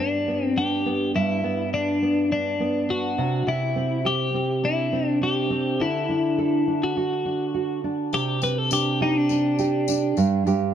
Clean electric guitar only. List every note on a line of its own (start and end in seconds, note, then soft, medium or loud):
0.00 0.45 D4 medium
0.45 0.59 C4 medium
0.58 1.11 G4 medium
1.16 1.69 E4 medium
1.74 2.31 D4 medium
2.32 2.91 D4 medium
2.90 3.49 F#4 medium
3.48 4.08 E4 medium
4.06 4.66 G4 medium
4.65 5.07 E4 medium
5.07 5.18 D4 medium
5.23 5.82 G4 medium
5.81 6.86 E4 medium
6.84 7.81 F#4 medium
8.14 8.43 G4 medium
8.43 8.58 B4 medium
8.58 8.72 A4 medium
8.73 8.99 G4 medium
9.02 9.17 D#4 medium
9.17 10.19 D4 medium